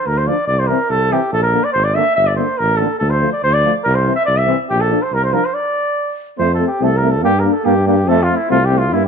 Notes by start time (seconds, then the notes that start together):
0.06 D2 A#4
0.18 C5
0.26 F3 D4 D5
0.47 C2 D5
0.59 C5
0.67 E3 C4 A#4
0.90 C2 A4
1.11 E3 C4 G4
1.33 A#1 A4
1.43 A#4
1.53 D3 A#3
1.64 D5
1.73 G#1 C5
1.84 D5
1.95 D3 A#3 E5
2.15 G1 E5
2.27 D5
2.36 D3 A#3 C5
2.58 A1 A#4
2.77 D3 A#3 A4
2.99 D2 A4
3.10 C5
3.22 F3 A3
3.33 D5
3.44 D2 C5
3.54 D5
3.64 F3 A3
3.84 C2 A#4
3.95 C5
4.05 E3 C4
4.15 E5
4.26 C2 D5
4.37 E5
4.46 E3 C4
4.70 A#1 G4
4.81 A4
4.90 F3 D4
5.02 C5
5.12 C2 A#4
5.24 C5
5.32 F3 D4 A#4
5.45 C5
5.54 D5
6.38 F2 A3 C4 C5
6.54 A4
6.59 A3 C4
6.68 G4
6.80 C2 A3 C4 A4
6.97 A#4
7.02 A3 C4
7.11 A4
7.22 G2 A#3 D4 G4
7.39 A#4
7.44 A#3 D4
7.53 A4
7.65 G2 A#3 D4 G4
7.86 A#3 D4 G4
8.07 F2 A3 C4 A4
8.23 F4
8.28 A3 C4
8.36 E4
8.50 C2 A3 C4 F4
8.65 G4
8.70 A3 C4
8.78 F4
8.92 G2 A#3 D4 E4